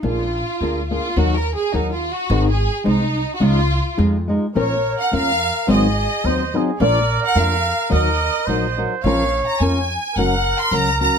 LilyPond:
<<
  \new Staff \with { instrumentName = "Violin section" } { \time 2/4 \key des \major \tempo 4 = 107 f'4. f'8 | \tuplet 3/2 { ges'8 bes'8 aes'8 ees'8 f'8 ges'8~ } | \tuplet 3/2 { ges'8 aes'4 } ees'8.~ ees'32 ges'32 | f'4 r4 |
\key bes \minor des''8. ges''16 f''4 | ees''4. r8 | d''8. ges''16 f''4 | ees''4. r8 |
f''8. bes''16 aes''4 | ges''8. c'''16 bes''8 bes''8 | }
  \new Staff \with { instrumentName = "Trumpet" } { \time 2/4 \key des \major r2 | r2 | r2 | r2 |
\key bes \minor bes'2 | aes'4 c''8 aes'8 | bes'2 | bes'4 c''4 |
des''4. r8 | bes'2 | }
  \new Staff \with { instrumentName = "Nylon-string guitar" } { \time 2/4 \key des \major <bes d' f' aes'>8 r8 <bes d' f' aes'>8 <bes d' f' aes'>8 | <ees ges ees' ges' bes'>8 r8 <ges ees' ges' bes'>8 r8 | <aes, ees aes c' ees' aes'>8 r8 <aes c' ees' aes'>8 r8 | <des aes ees' f' aes'>8 r8 <aes ees' f' aes'>8 <aes ees' f' aes'>8 |
\key bes \minor <bes, f bes des' f' bes'>8 r8 <bes des' f' bes'>8 r8 | <aes, ees ges c' ees' c''>8 r8 <ges c' ees' c''>8 <ges c' ees' c''>8 | <bes, f bes d' f' bes'>8 r8 <bes d' f' bes'>8 r8 | <ees ges ees' ges' bes'>8 r8 <ges ees' ges' bes'>8 <ges ees' ges' bes'>8 |
<bes, f bes des' f' bes'>8 r8 <bes des' f' bes'>8 r8 | <ges des' ges' bes'>8 r8 <ges des' ges' bes'>8 <ges des' ges' bes'>8 | }
  \new Staff \with { instrumentName = "Upright bass" } { \clef bass \time 2/4 \key des \major bes,,4 d,4 | ees,4 ees,4 | aes,,4 c,4 | des,4 f,4 |
\key bes \minor bes,,4 f,4 | aes,,4 ees,4 | bes,,4 f,4 | ees,4 bes,,4 |
bes,,4 f,4 | ges,,4 des,4 | }
>>